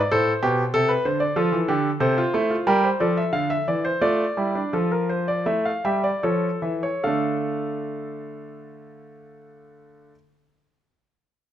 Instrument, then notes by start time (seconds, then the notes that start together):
grand piano
Already playing: D5
0.11 A2 A4 C5
0.43 B2 G4
0.74 C3 A4
0.89 B4
1.05 D3 C5
1.20 D5
1.36 F3 F4 A4
1.52 E3
1.68 D3 G4
2.00 C3 A4 C5
2.18 F4
2.34 A3 E4
2.50 F4
2.67 G3 G4 A#4
2.84 C5
3.00 F3 A4 D5
3.17 E5
3.33 D3 F5
3.50 E5
3.68 E3 D5
3.85 C5
4.01 A3 F4 D5
4.37 G3 E4
4.55 D4
4.73 F3 F4 A4
4.92 A#4
5.09 C5
5.28 D5
5.46 A3 E4 E5
5.65 F5
5.85 G3 G4 E5
6.04 D5
6.23 F3 A4 C#5
6.62 E3 E5
6.83 C#5
7.03 D3 A3 D4 A4 F5